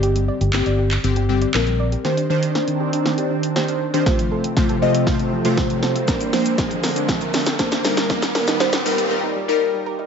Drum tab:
HH |xx-xxx-xxx-xxx-x|-x-x-x-x-x-x-x-x|-x-x-x-x-x-x-x-x|-xox-xox-xox-xox|
SH |----------------|----------------|----------------|xxxxxxxxxxxxxxxx|
CP |----x--x----x---|----------------|----------------|----------------|
SD |----o-------o---|o---o---o---o---|o---o---o---o-o-|o-o-o-o-o-oooooo|
BD |----------------|----------------|o---o---o---o---|o---o---o---o---|

HH |-xox-xox--------|
SH |xxxxxxxx--------|
CP |----------------|
SD |oooooo----------|
BD |o---------------|